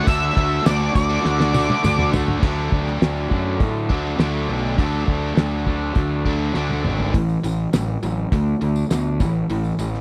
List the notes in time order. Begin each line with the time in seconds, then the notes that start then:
0.06 D2 D3 A3 D4 F#4 E5, kick, tambourine, crash
0.36 D2 D3 A3 D4 F#4, kick, crash
0.66 D2 D3 A3 D4 F#4 D5, snare, tambourine, crash
0.80 A3 D4 F#4
0.95 D2 D5, muted overdriven electric guitar stroke, kick, tambourine, crash
1.09 A3 D4 F#4
1.24 D2 D3 A3 D4, snare
1.38 A3 D4 F#4, snare
1.53 D3 A3 D4 F#4, high tom, tambourine
1.68 A3 D4 F#4, high tom
1.82 D2 D3 A3 D4 F#4, mid tom, tambourine
1.97 A3 D4 F#4, mid tom
2.12 D3 A3 D4 F#4, floor tom, tambourine
2.28 floor tom
2.42 D2 D3 F#3 A3 D4, kick, crash
2.72 D2, kick
2.87 snare
3.02 D2, snare, open hi-hat
3.30 F#2 D3 A3 D4, kick
3.60 A2, kick, open hi-hat
3.89 D2 D3 F#3 A3 D4, kick
4.18 D2 D3 F#3 A3 D4, snare, open hi-hat
4.48 B1
4.78 D2 D3 F#3 A3 D4, kick, open hi-hat
5.08 D2, kick
5.37 D2, snare, open hi-hat
5.67 D3 A3 D4, kick
5.95 D2, kick, open hi-hat
6.25 D3 F#3 A3 D4, kick
6.54 D2 D3 F#3 A3 D4, snare
6.70 high tom
6.85 G#1, mid tom
7.00 floor tom
7.14 A1 A2 E3, kick, open hi-hat
7.29 tambourine
7.43 A1 A2 E3, open hi-hat, tambourine
7.73 A1 A2 F#3, snare, open hi-hat, tambourine
8.03 A1 A2 F#3, open hi-hat, tambourine
8.32 D2 D3 A3, kick, open hi-hat
8.61 D2 D3 A3, open hi-hat, tambourine
8.76 tambourine
8.90 D2 D3 B3, snare, open hi-hat, tambourine
9.20 A1 A2 E3, kick, open hi-hat, tambourine
9.49 A1 A2 E3, open hi-hat
9.64 tambourine
9.79 A1 A2 E3, open hi-hat, tambourine
9.94 snare